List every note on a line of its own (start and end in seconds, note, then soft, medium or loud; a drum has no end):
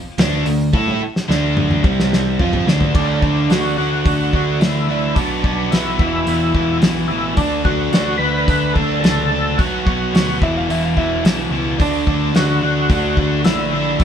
0.18 0.44 D2 medium
0.18 0.45 D3 medium
0.18 0.46 A3 medium
0.18 0.47 D4 loud
0.18 snare loud
0.18 open hi-hat medium
0.46 0.72 D2 medium
0.46 0.69 D3 medium
0.46 0.69 A3 medium
0.46 open hi-hat medium
0.73 1.00 A2 medium
0.73 1.01 A3 loud
0.73 1.01 E4 loud
0.73 1.01 A4 loud
0.73 kick medium
0.73 high tom medium
0.88 high tom soft
1.02 muted overdriven electric guitar stroke medium
1.02 muted picked electric bass stroke soft
1.16 snare medium
1.28 1.81 D2 medium
1.28 1.83 D3 medium
1.28 1.84 A3 medium
1.28 1.85 D4 medium
1.28 snare medium
1.57 mid tom medium
1.71 mid tom medium
1.83 2.36 C2 medium
1.83 2.39 C3 loud
1.83 2.39 G3 medium
1.83 2.39 C4 loud
1.83 kick loud
2.00 snare medium
2.13 snare medium
2.39 2.65 F2 medium
2.39 2.67 F3 medium
2.39 2.67 C4 medium
2.39 2.67 F4 medium
2.39 floor tom loud
2.53 floor tom medium
2.66 2.93 D2 medium
2.66 2.93 D3 medium
2.66 2.94 A3 medium
2.66 2.95 D4 medium
2.66 snare medium
2.81 floor tom medium
2.94 3.46 D2 medium
2.94 3.22 D3 loud
2.94 3.23 A3 loud
2.94 3.52 D4 medium
2.94 3.23 D4 loud
2.94 kick loud
2.94 crash medium
3.22 3.48 D3 medium
3.22 3.49 A3 medium
3.22 3.49 D4 medium
3.22 kick medium
3.49 3.76 D2 medium
3.49 3.76 D3 medium
3.49 3.76 A3 medium
3.49 3.77 D4 medium
3.49 3.77 F#4 loud
3.49 snare medium
3.49 open hi-hat soft
3.77 4.04 D2 medium
3.77 4.05 D3 medium
3.77 4.05 A3 medium
3.77 4.06 D4 medium
3.77 4.63 F#4 medium
4.05 4.31 D2 medium
4.05 4.32 D3 medium
4.05 4.33 A3 medium
4.05 4.33 D4 medium
4.05 kick loud
4.05 open hi-hat soft
4.33 4.59 D2 medium
4.33 4.60 D3 medium
4.33 4.60 A3 medium
4.33 4.61 D4 loud
4.33 kick medium
4.60 5.13 D2 medium
4.60 4.87 D3 medium
4.60 4.87 A3 medium
4.60 4.87 D4 medium
4.60 5.18 E4 medium
4.60 snare loud
4.60 open hi-hat medium
4.88 5.14 D3 medium
4.88 5.14 A3 medium
4.88 5.14 D4 medium
5.15 5.42 B1 medium
5.15 5.43 B2 medium
5.15 5.44 F#3 loud
5.15 5.44 B3 loud
5.15 5.72 D4 medium
5.15 kick loud
5.15 open hi-hat soft
5.44 5.70 B1 medium
5.44 5.71 B2 medium
5.44 5.72 F#3 medium
5.44 5.73 B3 medium
5.44 kick medium
5.71 5.98 B1 medium
5.71 5.98 B2 medium
5.71 5.98 F#3 medium
5.71 5.99 B3 loud
5.71 6.78 E4 medium
5.71 snare medium
5.71 open hi-hat soft
5.99 6.25 E1 medium
5.99 6.25 E2 medium
5.99 6.26 B2 medium
5.99 6.27 E3 medium
5.99 kick medium
6.27 6.53 E1 medium
6.27 6.53 E2 medium
6.27 6.53 B2 medium
6.27 6.54 E3 medium
6.27 open hi-hat soft
6.54 6.80 E1 medium
6.54 6.81 E2 medium
6.54 6.82 B2 medium
6.54 6.83 E3 loud
6.54 kick medium
6.82 7.08 B1 medium
6.82 7.08 E2 medium
6.82 7.09 B2 medium
6.82 7.09 E3 medium
6.82 snare loud
6.82 open hi-hat medium
7.08 7.36 A1 medium
7.08 7.35 E2 medium
7.08 7.36 B2 medium
7.08 7.36 E3 medium
7.08 7.34 E4 medium
7.37 7.89 D2 medium
7.37 7.64 D3 medium
7.37 7.65 A3 medium
7.37 7.63 D4 medium
7.37 7.65 D4 loud
7.37 kick loud
7.37 open hi-hat soft
7.65 7.92 D3 medium
7.65 7.93 A3 medium
7.65 7.93 D4 medium
7.65 8.16 F#4 medium
7.65 kick medium
7.92 8.18 D2 medium
7.92 8.19 D3 medium
7.92 8.20 A3 medium
7.92 8.20 D4 medium
7.92 snare loud
7.92 open hi-hat soft
8.18 8.46 D2 medium
8.18 8.46 D3 medium
8.18 8.47 A3 medium
8.18 8.48 D4 medium
8.18 8.76 B4 loud
8.47 8.74 D2 medium
8.47 8.74 D3 medium
8.47 8.76 A3 medium
8.47 8.76 D4 medium
8.47 kick medium
8.47 open hi-hat soft
8.73 9.01 D2 medium
8.73 9.02 D3 medium
8.73 9.02 A3 loud
8.73 8.99 A4 medium
8.73 kick medium
8.78 9.03 D4 loud
9.01 9.55 C#2 medium
9.01 9.29 D3 medium
9.01 9.30 A3 medium
9.01 9.31 D4 medium
9.01 9.59 A4 medium
9.01 open hi-hat soft
9.05 snare loud
9.31 9.57 D3 medium
9.31 9.57 A3 medium
9.31 9.58 D4 medium
9.57 9.84 B1 medium
9.57 9.84 B2 medium
9.57 9.85 F#3 medium
9.57 9.86 B3 loud
9.57 10.37 F#4 medium
9.57 kick loud
9.57 open hi-hat soft
9.86 10.12 B1 medium
9.86 10.12 B2 medium
9.86 10.13 F#3 medium
9.86 10.13 B3 medium
9.86 kick medium
10.13 10.39 D2 medium
10.13 10.39 B2 medium
10.13 10.40 F#3 medium
10.13 10.40 B3 medium
10.13 snare loud
10.13 open hi-hat soft
10.41 10.67 E1 medium
10.41 10.67 E2 medium
10.41 10.67 B2 medium
10.41 10.68 E3 medium
10.41 10.56 E5 medium
10.41 kick medium
10.57 10.70 F5 medium
10.68 10.94 E1 medium
10.68 10.95 E2 medium
10.68 10.95 B2 medium
10.68 10.96 E3 medium
10.68 10.83 E5 medium
10.68 open hi-hat medium
10.85 10.97 F5 medium
10.96 11.23 E1 medium
10.96 11.22 E2 medium
10.96 11.23 B2 medium
10.96 11.24 E3 loud
10.96 11.24 E5 loud
10.96 kick medium
11.23 11.49 B1 medium
11.23 11.50 E2 medium
11.23 11.50 B2 medium
11.23 11.51 E3 medium
11.23 snare loud
11.23 open hi-hat medium
11.50 11.77 C#2 medium
11.50 11.77 E2 medium
11.50 11.77 B2 medium
11.50 11.78 E3 medium
11.78 12.31 D2 medium
11.78 12.05 D3 medium
11.78 12.06 A3 loud
11.78 12.06 D4 loud
11.78 12.32 D4 medium
11.78 kick loud
11.78 open hi-hat soft
12.06 12.33 D3 medium
12.06 12.34 A3 medium
12.06 12.34 D4 medium
12.06 kick medium
12.34 12.60 D2 medium
12.34 12.61 D3 medium
12.34 12.62 A3 medium
12.34 12.62 D4 medium
12.34 12.62 F#4 loud
12.34 snare loud
12.34 open hi-hat soft
12.62 12.88 D2 medium
12.62 12.88 D3 medium
12.62 12.88 A3 medium
12.62 12.89 D4 medium
12.62 13.42 F#4 medium
12.89 13.16 D2 medium
12.89 13.14 D3 medium
12.89 13.15 A3 medium
12.89 13.16 D4 medium
12.89 kick loud
12.89 open hi-hat soft
13.15 13.43 D2 medium
13.15 13.43 D3 medium
13.15 13.44 A3 medium
13.15 13.45 D4 loud
13.15 kick medium
13.45 13.97 A#1 medium
13.45 13.70 D3 medium
13.45 13.71 A3 medium
13.45 13.71 D4 medium
13.45 14.02 E4 medium
13.45 snare loud
13.45 open hi-hat medium
13.71 13.98 D3 medium
13.71 13.98 A3 medium
13.71 13.98 D4 medium
13.98 14.04 B1 medium
13.98 14.04 B2 medium
13.98 14.04 F#3 medium
13.98 14.04 B3 medium
13.98 kick medium
13.98 open hi-hat soft